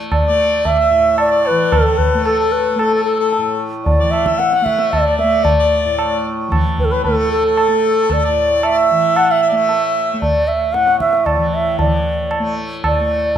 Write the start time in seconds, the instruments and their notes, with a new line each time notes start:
Already playing: tanpura A2 E3 A3
0.12 bansuri D5, tabla na, tabla ge
0.26 tanpura A3, harmonica D5
0.65 bansuri E5, tabla tin, tabla ge
0.79 harmonica E5
0.90 tanpura A2
1.18 bansuri D5, tabla na
1.31 harmonica D5
1.45 bansuri B4, tabla na
1.50 tanpura E3
1.72 bansuri A4, tabla na, tabla ge
1.86 harmonica A4
1.98 bansuri B4, tabla ge
2.14 tanpura A3
2.25 bansuri A4, tabla na
2.39 harmonica A4
2.52 bansuri B4
2.71 bansuri B4
2.76 tanpura A3, bansuri A4, tabla na
2.93 harmonica A4
3.04 bansuri A4
3.20 harmonica A4
3.32 tabla tin
3.38 tanpura A2
3.85 bansuri D5, tabla tin, tabla ge
3.99 tanpura E3, harmonica D5
4.11 bansuri E5, tabla na
4.26 harmonica E5, tabla ke
4.38 bansuri F#5, tabla te
4.53 harmonica F#5, tabla te
4.62 tanpura A3, bansuri E5
4.66 tabla ke
4.79 harmonica E5, tabla te
4.91 bansuri D5, tabla na, tabla ge
5.05 harmonica D5
5.18 bansuri E5, tabla te
5.23 tanpura A3
5.44 bansuri D5, tabla tin, tabla ge
5.59 harmonica D5
5.85 tanpura A2
5.99 tabla na
6.48 tanpura E3
6.52 tabla na, tabla ge
6.78 bansuri B4, tabla ge
6.85 bansuri A4
6.91 harmonica B4, bansuri B4
7.04 tanpura A3, bansuri A4, harmonica B4, tabla tin, tabla ge
7.18 harmonica A4
7.32 bansuri A4
7.45 harmonica A4
7.57 tabla na
7.68 tanpura A3
8.10 bansuri D5, tabla na, tabla ge
8.25 tanpura A2, harmonica D5
8.63 bansuri E5, tabla na
8.79 harmonica E5
8.90 tanpura E3
9.16 bansuri F#5, tabla na
9.30 bansuri E5, harmonica F#5
9.42 harmonica E5
9.50 tanpura A3, harmonica D5
9.57 harmonica E5
9.69 tabla tin
10.14 tanpura A3
10.21 bansuri D5, tabla tin, tabla ge
10.48 bansuri E5
10.73 tanpura A2, bansuri F#5, tabla te
10.87 tabla te
11.00 bansuri E5, tabla ke
11.13 tabla te
11.26 bansuri D5, tabla na, tabla ge
11.36 tanpura E3
11.54 bansuri E5
11.79 tanpura E3, bansuri D5, tabla tin, tabla ge
12.31 tabla na
12.40 tanpura A3
12.84 bansuri D5, tabla na, tabla ge
13.00 tanpura A3